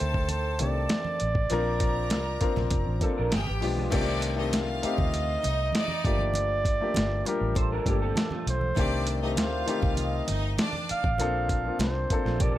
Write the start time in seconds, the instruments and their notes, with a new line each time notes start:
Already playing: grand piano D#3 A3 C4 D4 G4, string section A4 A5, flugelhorn C5
0.01 fingered electric bass D2
0.14 kick
0.29 flugelhorn C5, closed hi-hat, muted conga
0.59 fingered electric bass C2, grand piano D#3 A3 C4 D4 G4, flugelhorn D5, closed hi-hat, muted conga
0.89 snare, closed hi-hat, high conga
1.05 high conga
1.20 fingered electric bass A1, closed hi-hat
1.35 kick
1.50 fingered electric bass A#1, grand piano F3 A#3 C4 D4 A#4, string section A#4 A#5, closed hi-hat, muted conga
1.80 kick, closed hi-hat
2.10 fingered electric bass C2, snare, closed hi-hat, high conga
2.40 grand piano F3 A#3 C4 D4 A#4, kick, closed hi-hat, muted conga
2.56 fingered electric bass A#1, snare, low conga
2.70 fingered electric bass F1, kick, closed hi-hat, muted conga
2.87 fingered electric bass A1
3.00 grand piano F3 A#3 C4 D4 A4, clean electric guitar C4 A4, kick, closed hi-hat, muted conga
3.18 fingered electric bass A#1, clean electric guitar D4 A#4
3.32 fingered electric bass G1, clean electric guitar B3 G#4, string section G4 G5, snare, closed hi-hat, high conga
3.46 fingered electric bass G#1, clean electric guitar B3 G4, high conga
3.61 fingered electric bass B1, grand piano F3 G#3 B3 D4 G4, open hi-hat
3.77 clean electric guitar G#3 F4, high conga
3.90 fingered electric bass C2, grand piano D#3 A3 C4 D4 G4, string section D4 D5, kick, closed hi-hat, crash, muted conga
4.22 closed hi-hat
4.36 grand piano D#3 A3 C4 D4 G4, string section D#4 D#5
4.52 string section F4 F5, snare, closed hi-hat, high conga
4.82 grand piano A3 C4 D#4 G4, flugelhorn D#5, muted fingered electric bass stroke, closed hi-hat
4.98 fingered electric bass D2, kick, low conga
5.12 closed hi-hat, muted conga
5.42 fingered electric bass C2, string section D#4 D#5, closed hi-hat, muted conga
5.72 string section D#4 D5, snare, closed hi-hat, high conga
5.88 high conga
6.04 fingered electric bass G1, grand piano F3 A3 A#3 D4 G4, flugelhorn D5, kick, closed hi-hat
6.19 high conga
6.34 closed hi-hat, muted conga
6.65 kick, closed hi-hat
6.80 grand piano F3 A3 A#3 D4 G4
6.94 fingered electric bass G1, snare, closed hi-hat, high conga
7.25 grand piano F3 G3 A#3 D4 G4, flugelhorn A#4, closed hi-hat, muted conga
7.41 fingered electric bass A1
7.55 flugelhorn A4, clean electric guitar C5, kick, closed hi-hat, muted conga
7.72 clean electric guitar D4 A#4
7.86 fingered electric bass G1, grand piano A#2 F3 A3 D4 G4, clean electric guitar A#3 G4, kick, closed hi-hat, muted conga
8.02 clean electric guitar C4 A4
8.16 clean electric guitar A#3 G4, snare, closed hi-hat, high conga
8.31 clean electric guitar A3 F4, high conga
8.47 fingered electric bass B1, flugelhorn C5, closed hi-hat
8.61 high conga
8.76 fingered electric bass C2, grand piano D#3 A3 C4 D4 G4, string section D4 D5, kick, closed hi-hat, muted conga
9.07 closed hi-hat
9.22 grand piano D#3 A3 C4 D4 G4, string section D#4 D#5
9.37 fingered electric bass D2, string section F4 F5, flugelhorn C5, snare, closed hi-hat, high conga
9.66 grand piano D#3 A3 C4 D#4 G4, closed hi-hat, muted conga
9.82 fingered electric bass C2, kick, low conga
9.97 flugelhorn D#5, closed hi-hat, muted conga
10.28 fingered electric bass G1, string section D#4 D#5, closed hi-hat, muted conga
10.58 string section D4 D5, snare, closed hi-hat, high conga
10.73 high conga
10.89 flugelhorn F5, muted fingered electric bass stroke, closed hi-hat
11.04 fingered electric bass A1, kick, high conga
11.18 fingered electric bass A#1, grand piano F3 A#3 C4 D4 A4, closed hi-hat, muted conga
11.49 kick, closed hi-hat
11.64 grand piano F3 A#3 C4 D4 F4
11.79 fingered electric bass C2, flugelhorn C5, snare, closed hi-hat, high conga
12.09 grand piano F3 A#3 C4 D4 A4, kick, closed hi-hat, muted conga
12.25 fingered electric bass A#1, clean electric guitar A3 F4, snare
12.40 clean electric guitar A#3 G4, flugelhorn D5, kick, closed hi-hat, muted conga, low conga